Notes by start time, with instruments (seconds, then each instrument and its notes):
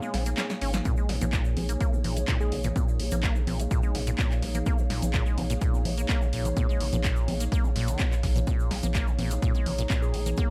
Already playing: analog synth pad A#3 G#4 F5, ambient pad D#4 G#4 C#5 G#5
0.02 acid bass G#3, high conga, shaker
0.14 sub bass A#1, acid bass C#4, snare, open hi-hat
0.26 acid bass A#3, closed hi-hat, shaker
0.38 acid bass A#3, snare, clap, closed hi-hat, high conga, shaker
0.50 snare, shaker
0.61 sub bass G#1, acid bass C#4, open hi-hat
0.73 acid bass F3, snare, closed hi-hat, low conga, shaker
0.85 acid bass A#2, analog synth pad C#5, kick, closed hi-hat, high conga, shaker
0.97 acid bass G#3, shaker
1.09 sub bass A#1, acid bass A#2, snare, open hi-hat
1.21 sub bass A#1, acid bass A#2, closed hi-hat, high conga, low conga, shaker
1.33 acid bass A#2, kick, clap, closed hi-hat, shaker
1.45 shaker
1.57 sub bass A#1, acid bass A#3, open hi-hat, high conga, low conga
1.61 ambient pad F5
1.69 acid bass A#3, closed hi-hat, shaker
1.80 acid bass A#3, kick, closed hi-hat, shaker
1.93 acid bass C3, high conga, shaker
2.04 sub bass A#1, acid bass A#2, open hi-hat, low conga
2.17 acid bass C#4, closed hi-hat, shaker
2.28 acid bass A#2, kick, clap, closed hi-hat, high conga, shaker
2.40 acid bass G#3, soft synth lead G#4, shaker
2.52 sub bass A#1, acid bass A#2, open hi-hat
2.63 acid bass A#2, closed hi-hat, low conga, shaker
2.76 acid bass A#2, kick, closed hi-hat, high conga, shaker
2.88 shaker
3.00 sub bass A#1, acid bass A#3, open hi-hat
3.11 sub bass A#1, acid bass A#3, closed hi-hat, high conga, low conga, shaker
3.23 acid bass A#3, kick, clap, closed hi-hat, shaker
3.35 acid bass C3, shaker
3.47 sub bass A#1, acid bass A#2, open hi-hat, high conga, low conga
3.59 acid bass C#4, closed hi-hat, shaker
3.71 acid bass A#2, kick, closed hi-hat, shaker
3.83 acid bass G#3, high conga, shaker
3.95 sub bass A#1, acid bass A#2, snare, open hi-hat
4.07 acid bass A#2, closed hi-hat, shaker
4.19 acid bass A#2, kick, clap, closed hi-hat, high conga, shaker
4.31 clap, shaker
4.42 sub bass A#1, acid bass A#3, snare, open hi-hat
4.54 acid bass A#3, closed hi-hat, low conga, shaker
4.66 acid bass A#3, analog synth pad C#5, kick, closed hi-hat, high conga, shaker
4.78 acid bass C3, shaker
4.90 sub bass A#1, acid bass A#2, snare, open hi-hat
5.02 sub bass A#1, acid bass C#4, closed hi-hat, high conga, low conga, shaker
5.14 acid bass A#2, kick, clap, closed hi-hat, shaker
5.26 acid bass G#3, shaker
5.38 sub bass A#1, acid bass A#2, open hi-hat, high conga, low conga
5.50 acid bass A#2, closed hi-hat, shaker
5.61 acid bass A#2, kick, closed hi-hat, shaker
5.74 high conga, shaker
5.85 sub bass A#1, acid bass A#3, open hi-hat, low conga
5.98 acid bass A#3, closed hi-hat, shaker
6.09 acid bass A#3, kick, clap, closed hi-hat, high conga, shaker
6.21 acid bass C3, shaker
6.33 sub bass A#1, acid bass A#2, open hi-hat
6.45 acid bass C#4, closed hi-hat, low conga, shaker
6.57 acid bass A#2, kick, closed hi-hat, high conga, shaker
6.69 acid bass G#3, shaker
6.80 sub bass A#1, acid bass A#2, open hi-hat
6.93 sub bass A#1, acid bass A#2, closed hi-hat, high conga, low conga, shaker
7.04 acid bass A#2, kick, clap, closed hi-hat, shaker
7.16 shaker
7.28 sub bass A#1, acid bass A#3, open hi-hat, high conga, low conga
7.40 acid bass A#3, closed hi-hat, shaker
7.52 acid bass A#3, kick, closed hi-hat, shaker
7.64 acid bass C3, high conga, shaker
7.76 sub bass A#1, acid bass A#2, snare, open hi-hat
7.88 acid bass D#3, closed hi-hat, shaker
7.99 acid bass A#2, kick, clap, closed hi-hat, high conga, shaker
8.12 acid bass C3, clap, shaker
8.23 sub bass A#1, acid bass C3, kick, snare, open hi-hat
8.36 acid bass A#2, closed hi-hat, low conga, shaker
8.47 acid bass A#2, analog synth pad C#5, kick, closed hi-hat, high conga, shaker
8.60 shaker
8.71 sub bass A#1, acid bass A#3, snare, open hi-hat
8.83 sub bass A#1, acid bass A#3, closed hi-hat, high conga, low conga, shaker
8.95 acid bass A#3, kick, clap, closed hi-hat, shaker
9.07 acid bass C3, shaker
9.19 sub bass A#1, acid bass A#2, open hi-hat, high conga, low conga
9.23 ambient pad A#5
9.31 acid bass C#4, closed hi-hat, shaker
9.42 acid bass A#2, kick, closed hi-hat, shaker
9.54 acid bass G#3, high conga, shaker
9.66 sub bass A#1, acid bass A#2, open hi-hat, low conga
9.78 acid bass A#2, closed hi-hat, shaker
9.90 acid bass A#2, kick, clap, closed hi-hat, high conga, shaker
10.02 soft synth lead G#4, shaker
10.14 sub bass A#1, acid bass A#3, open hi-hat
10.26 acid bass A#3, closed hi-hat, low conga, shaker
10.37 acid bass A#3, kick, closed hi-hat, high conga, shaker